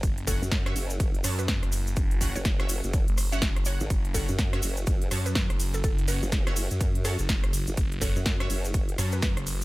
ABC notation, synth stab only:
X:1
M:4/4
L:1/16
Q:"Swing 16ths" 1/4=124
K:F#m
V:1 name="Synth stab"
z2 [CFcf] z2 [CFce]4- [CFce] [CFca] z4 z | z2 [CFcf] z2 [CFce]4- [CFce] z [CFcf] z2 [CFcf]2- | [CFcf]2 [CFcf] z2 [CFce]4- [CFce] [CFca] z4 z | z2 [CFcf] z2 [CFce]4- [CFce] [CFca] z4 z |
z2 [CFcf] z2 [CFce]4- [CFce] [CFca] z4 z |]